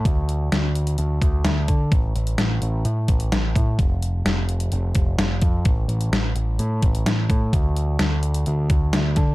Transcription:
<<
  \new Staff \with { instrumentName = "Picked electric bass" } { \clef bass \time 4/4 \key d \lydian \tempo 4 = 128 d,4 d,4 d,8 d,8 d,8 d8 | a,,8 a,,8 a,,8 a,,8 a,8 a,,8 a,,8 a,8 | f,,4 f,,4 f,,8 f,,8 f,,8 f,8 | a,,8 a,,8 a,,8 a,,8 a,8 a,,8 a,,8 a,8 |
d,4 d,4 d,8 d,8 d,8 d8 | }
  \new DrumStaff \with { instrumentName = "Drums" } \drummode { \time 4/4 <hh bd>8 hh8 <hh sn>8 hh16 hh16 hh8 <hh bd>8 <hh sn>8 <hh bd>8 | <hh bd>8 hh16 hh16 <hh sn>8 hh8 hh8 <hh bd>16 hh16 <hh sn>8 <hh bd>8 | <hh bd>8 hh8 <hh sn>8 hh16 hh16 hh8 <hh bd>8 <hh sn>8 <hh bd>8 | <hh bd>8 hh16 hh16 <hh sn>8 hh8 hh8 <hh bd>16 hh16 <hh sn>8 <hh bd>8 |
<hh bd>8 hh8 <hh sn>8 hh16 hh16 hh8 <hh bd>8 <hh sn>8 <hh bd sn>8 | }
>>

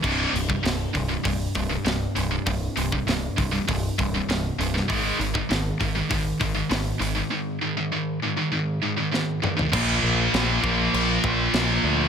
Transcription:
<<
  \new Staff \with { instrumentName = "Distorted electric guitar" } { \clef bass \time 4/4 \key c \minor \tempo 4 = 99 <c, g, c>8 <c, g,>16 <c, g,>16 <c, g,>8 <c, g,>16 <c, g,>16 <c, g,>8 <c, g,>16 <c, g,>16 <c, g,>8 <c, g,>16 <c, g,>16 | <c, g,>8 <c, g,>16 <c, g,>16 <c, g,>8 <c, g,>16 <c, g,>16 <c, g,>8 <c, g,>16 <c, g,>16 <c, g,>8 <c, g,>16 <c, g,>16 | <aes, ees aes>8 <aes, ees>16 <aes, ees>16 <aes, ees>8 <aes, ees>16 <aes, ees>16 <aes, ees>8 <aes, ees>16 <aes, ees>16 <aes, ees>8 <aes, ees>16 <aes, ees>16 | <aes, ees>8 <aes, ees>16 <aes, ees>16 <aes, ees>8 <aes, ees>16 <aes, ees>16 <aes, ees>8 <aes, ees>16 <aes, ees>16 <aes, ees>8 <aes, ees>16 <aes, ees>16 |
<bes, f bes>4. <bes, f bes>2~ <bes, f bes>8 | }
  \new Staff \with { instrumentName = "Picked electric bass" } { \clef bass \time 4/4 \key c \minor c,,8 c,,8 c,,8 c,,8 c,,8 c,,8 c,,8 c,,8 | c,,8 c,,8 c,,8 c,,8 c,,8 c,,8 c,,8 c,,8 | aes,,8 aes,,8 aes,,8 aes,,8 aes,,8 aes,,8 aes,,8 aes,,8 | r1 |
bes,,8 bes,,8 bes,,8 bes,,8 bes,,8 bes,,8 bes,,8 d,8 | }
  \new DrumStaff \with { instrumentName = "Drums" } \drummode { \time 4/4 <cymc bd>8 hho16 bd16 <hho sn>8 <hho bd>8 <hho bd>8 <hho bd>8 <hho sn>8 hho8 | <hho bd>8 hho16 bd16 <hho sn>8 <hho bd>8 <hho bd>8 <hho bd>8 <hho sn>8 hho16 sn16 | <hho bd>8 hho16 bd16 <hho sn>8 <hho bd>8 <hho bd>8 <hho bd>8 <hho sn>8 hho8 | r4 r4 r4 sn8 toml16 tomfh16 |
<cymc bd>4 <cymc sn>8 bd8 cymc8 bd8 <cymc sn>4 | }
>>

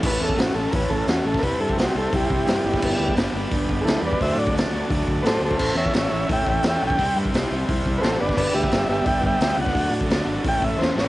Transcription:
<<
  \new Staff \with { instrumentName = "Transistor combo organ" } { \time 4/4 \key g \lydian \tempo 4 = 173 b'8 a'8 fis'8 a'8 <bes' b'>8 a'8 fis'8 a'8 | <bes' b'>8 a'8 fis'8 a'8 <e' g'>2~ | <e' g'>4 r2 <e' gis' a'>8 <b' d''>8 | <c'' e''>8 d''8 r2 <a' b' c''>8 <a' c''>8 |
<a' c''>8 <cis'' e''>8 <cis'' e''>8 <cis'' e''>8 <e'' g''>8 <e'' g''>8 <e'' g''>8 <fis'' g''>8~ | <fis'' g''>8 r2 r8 <a' b' c''>8 <b' d''>8 | <b' d''>8 <g' e''>8 <g' e''>8 <g' e''>8 <e'' g''>8 <e'' g''>8 <e'' g''>8 <f'' fis''>8~ | <f'' fis''>8 r4. g''8 e''8 c''8 cis''8 | }
  \new Staff \with { instrumentName = "Transistor combo organ" } { \time 4/4 \key g \lydian <cis' e' a'>1 | <e' g' c''>2.~ <e' g' c''>8 <d' g' b'>8~ | <d' g' b'>1 | <fis' a' d''>1 |
<e' a' cis''>1 | <e' g' c''>2.~ <e' g' c''>8 <d' g' b'>8~ | <d' g' b'>1 | <d' fis' a'>2 <cis' e' a'>2 | }
  \new Staff \with { instrumentName = "Overdriven electric guitar" } { \time 4/4 \key g \lydian <a, e a cis' e'>4 <a, e a cis' e'>8 <a, e a cis' e'>8 <a, e a cis' e'>4 <a, e a cis' e'>8 <a, e a cis' e'>8 | <c g c' e'>4 <c g c' e'>8 <c g c' e'>8 <c g c' e'>4 <c g c' e'>8 <g, d g b d'>8 | <g, d g b d'>4 <g, d g b d'>8 <g, d g b d'>8 <g, d g b d'>4 <g, d g b d'>8 <g, d g b d'>8 | <d fis a d'>4 <d fis a d'>8 <d fis a d'>8 <d fis a d'>4 <d fis a d'>8 <d fis a d'>8 |
<a, e a cis' e'>4 <a, e a cis' e'>8 <a, e a cis' e'>8 <a, e a cis' e'>4 <a, e a cis' e'>8 <a, e a cis' e'>8 | <c g c' e'>4 <c g c' e'>8 <c g c' e'>8 <c g c' e'>4 <c g c' e'>8 <g, d g b d'>8 | <g, d g b d'>4 <g, d g b d'>8 <g, d g b d'>8 <g, d g b d'>4 <g, d g b d'>8 <g, d g b d'>8 | <d fis a d'>4 <d fis a d'>8 <d fis a d'>8 <a, e a cis' e'>4 <a, e a cis' e'>8 <a, e a cis' e'>8 | }
  \new Staff \with { instrumentName = "Fingered electric bass" } { \clef bass \time 4/4 \key g \lydian a,,8 e,8 a,,8 a,,8 a,,8 a,,8 e,8 a,,8 | c,8 g,8 c,8 c,8 c,8 c,8 g,8 g,,8 | g,,8 d,8 g,,8 g,,8 g,,8 g,,8 d,8 e,8 | d,8 a,8 d,8 d,8 d,8 d,8 a,8 d,8 |
a,,8 e,8 a,,8 a,,8 a,,8 a,,8 e,8 b,,8 | c,8 g,8 c,8 c,8 c,8 c,8 a,,8 g,,8 | g,,8 d,8 g,,8 g,,8 g,,8 g,,8 d,8 cis,8 | d,8 a,8 d,8 gis,,8 a,,8 a,,8 e,8 a,,8 | }
  \new DrumStaff \with { instrumentName = "Drums" } \drummode { \time 4/4 <cymc bd>8. bd16 <hho sn>4 <hho bd>8 bd8 <hho sn>8. <bd sn>16 | <hho bd>8. bd16 <hho sn>4 <hho bd>8 bd8 <hho sn>8. <bd sn>16 | <cymc bd>8. bd16 <hho sn>4 <hho bd>8 bd8 <hho sn>8. bd16 | <hho bd>8. bd16 <hho sn>4 <hho bd>8 bd8 <hho sn>8. bd16 |
<cymc bd>8. bd16 <hho sn>4 <hho bd>8 bd8 <hho sn>8. bd16 | <hho bd>8. bd16 <hho sn>4 <hho bd>8 bd8 <hho sn>8. <bd sn>16 | <cymc bd>8. bd16 <hho sn>4 <hho bd>8 bd8 <hho sn>8. <bd sn>16 | <hho bd>8. bd16 <hho sn>4 <hho bd>8 bd8 sn8 sn8 | }
>>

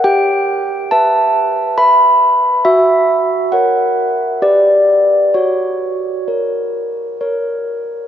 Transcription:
\new Staff \with { instrumentName = "Handbells" } { \time 3/4 \key fis \phrygian \tempo 4 = 67 << { g''4 a''4 b''4 | e''4 fis''4 d''4 | cis''2~ cis''8 r8 | } \\ { g'4 <b' e''>4 <b' e''>4 | fis'4 <ais' cis''>4 <g' b'>4 | fis'4 <ais' cis''>4 <ais' cis''>4 | } >> }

